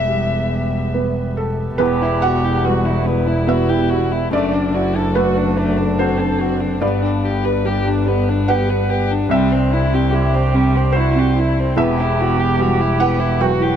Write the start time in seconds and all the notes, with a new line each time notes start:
Already playing: E1 E2 G3 B3 G4 B4 E5
0.08 G3
0.94 B3 B4
1.37 A4
1.78 E1 E2 G3 B3 E4 G4 B4
2.02 E4 E5
2.22 F#4 E5 F#5
2.44 E4 G4
2.64 G3 F#4 B4
2.85 E4 E5
3.06 B3 E4
3.27 E4 B4
3.47 B3 F#4 B4 E5
3.69 E4 G4
3.90 F#4 G4
4.11 E4
4.31 F#1 F#2 A3 D4 F#4 D5
4.53 D4 D5
4.74 E4 F#4 D5
4.95 D4 A4
5.15 A3 F#4 A4 B4
5.37 D4 D5
5.57 A3 D4
5.78 D4 A4
5.98 C4 D4 F#4 A4 C5 D5
6.20 D4 A4
6.40 F#4
6.60 D4
6.81 G1 G2 G3 B3 D4 G4 B4 D5
7.02 D4 G5
7.23 G4 G5
7.44 G4 B4
7.65 G3 D4 G4 D5
7.85 D4 G5
8.06 B3 G4
8.28 D4 D5
8.48 G4 B4 F#5 G5
8.69 G4 B4
8.90 G4 B4
9.11 D4
9.29 C2 G3 C4 C5 E5
9.52 C4 C5
9.70 E4 C5
9.92 C4 G4
10.11 G3 E4 G4
10.34 C4 C5
10.54 G3 C4
10.76 C4
10.92 E4 F#4 C5
10.97 E4
11.15 C4 G4
11.34 E4
11.39 E4
11.59 C4
11.76 E1 E2 E3 B3 E4 G4 B4 E5
11.96 E4 E5
12.16 E5
12.21 F#4
12.37 E4 G4
12.57 G3 F#4 B4
12.79 E4 E5
12.99 B3 E4 F#5
13.19 E4 B4
13.39 F#3 F#4 B4 E5 G5
13.60 E4 G4